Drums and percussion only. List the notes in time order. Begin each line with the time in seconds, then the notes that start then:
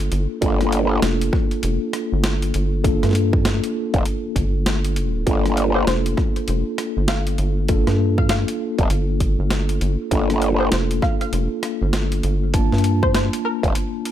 0.12 closed hi-hat
0.42 kick, closed hi-hat
0.61 cross-stick, closed hi-hat
0.72 closed hi-hat
1.02 snare, closed hi-hat
1.21 closed hi-hat
1.33 kick, cross-stick
1.51 closed hi-hat
1.63 closed hi-hat
1.93 cross-stick, closed hi-hat
2.24 snare, closed hi-hat
2.42 closed hi-hat
2.54 closed hi-hat
2.84 kick, closed hi-hat
3.03 cross-stick, snare, closed hi-hat
3.05 snare
3.09 snare
3.11 snare
3.13 snare, closed hi-hat
3.33 kick
3.45 snare, closed hi-hat
3.64 closed hi-hat
3.94 kick, closed hi-hat
4.06 closed hi-hat
4.36 kick, closed hi-hat
4.66 snare, closed hi-hat
4.85 closed hi-hat
4.96 closed hi-hat
5.27 kick, closed hi-hat
5.46 cross-stick, closed hi-hat
5.57 closed hi-hat
5.87 snare, closed hi-hat
6.06 closed hi-hat
6.17 kick, cross-stick
6.36 closed hi-hat
6.48 closed hi-hat
6.78 cross-stick, closed hi-hat
7.08 snare, closed hi-hat
7.27 closed hi-hat
7.38 closed hi-hat
7.68 kick, closed hi-hat
7.87 cross-stick, snare, closed hi-hat
8.18 kick
8.29 snare, closed hi-hat
8.48 closed hi-hat
8.78 kick, closed hi-hat
8.90 closed hi-hat
9.20 kick, closed hi-hat
9.50 snare, closed hi-hat
9.69 closed hi-hat
9.81 closed hi-hat
10.11 kick, closed hi-hat
10.30 cross-stick, closed hi-hat
10.42 closed hi-hat
10.72 snare, closed hi-hat
10.91 closed hi-hat
11.02 kick, cross-stick
11.21 closed hi-hat
11.33 closed hi-hat
11.63 cross-stick, closed hi-hat
11.93 snare, closed hi-hat
12.12 closed hi-hat
12.23 closed hi-hat
12.54 kick, closed hi-hat
12.72 snare
12.78 closed hi-hat
12.84 closed hi-hat
13.03 kick
13.15 snare, closed hi-hat
13.33 closed hi-hat
13.63 kick, closed hi-hat
13.75 closed hi-hat
14.05 closed hi-hat